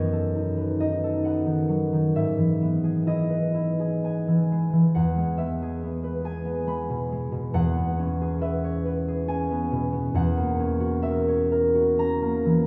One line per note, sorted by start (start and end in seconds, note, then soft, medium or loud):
0.00 2.18 F#2 medium
0.00 1.45 D#3 soft
0.00 1.24 B3 soft
0.00 0.56 B4 soft
0.00 1.44 C#5 medium
0.00 0.79 D#5 medium
0.12 1.02 A4 soft
0.35 0.80 D#4 soft
0.57 3.29 B4 soft
0.80 2.20 D#4 soft
0.80 2.20 D#5 medium
1.03 2.20 A4 soft
1.24 2.60 B3 soft
1.24 2.20 F#5 medium
1.46 1.91 D#3 soft
1.69 2.19 F#3 soft
1.93 2.20 D#3 soft
2.16 4.98 G#2 medium
2.16 5.36 E5 medium
2.38 4.26 E3 soft
2.61 4.03 B3 soft
2.84 3.78 G#4 soft
3.06 3.53 E4 soft
3.06 4.99 D#5 medium
3.30 6.02 B4 soft
3.54 7.44 E4 soft
3.80 5.61 G#4 soft
4.04 5.36 B3 soft
4.04 6.23 G#5 medium
4.28 4.71 E3 soft
4.52 5.16 G#3 soft
4.73 4.99 E3 soft
4.95 7.53 E2 medium
4.95 5.69 F#5 medium
5.17 6.66 G#3 soft
5.37 5.82 B3 soft
5.37 8.40 E5 medium
5.62 6.24 G#4 soft
5.83 6.44 B3 soft
6.04 8.40 B4 medium
6.25 8.20 G#4 medium
6.25 9.27 G#5 medium
6.45 7.75 B3 soft
6.67 7.11 G#3 soft
6.67 10.16 B5 medium
6.89 7.31 B2 soft
7.12 10.17 G#3 soft
7.32 7.57 B2 soft
7.54 10.14 E2 medium
7.54 8.99 F#5 loud
7.77 9.49 B3 medium
7.99 9.27 C#4 medium
8.21 9.07 G#4 medium
8.41 8.84 B4 medium
8.41 11.01 E5 medium
8.64 11.27 C#5 medium
8.85 10.18 B4 medium
9.08 10.18 G#4 medium
9.28 10.58 C#4 soft
9.28 10.17 G#5 medium
9.50 9.91 B3 soft
9.71 10.17 B2 medium
9.93 10.17 B3 medium
10.14 12.67 E2 medium
10.14 12.67 F#5 loud
10.37 12.20 A#3 soft
10.60 11.97 C#4 medium
10.80 11.74 F#4 medium
11.02 11.50 A#4 medium
11.02 12.67 E5 medium
11.28 12.67 C#5 medium
11.52 12.67 A#4 medium
11.75 12.67 F#4 medium
11.98 12.67 C#4 soft
11.98 12.67 A#5 medium
12.22 12.67 A#3 medium
12.45 12.67 E3 medium